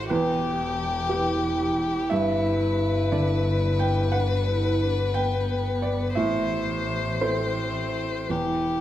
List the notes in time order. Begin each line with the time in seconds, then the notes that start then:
Already playing: A1 A2 F#4 A4 C5 E5
0.10 E1 E2 G4 B4
1.09 E4 G4 B4
2.10 G1 G2 B4 E5
3.12 D3 D5
3.79 G5
4.12 D4 F#5
4.47 E4
4.82 D4
5.14 B3 G5
5.82 D5
6.15 A1 A2 C5 E5
7.21 C4 E4 A4 C5
8.29 E1 E2 E4 G4 B4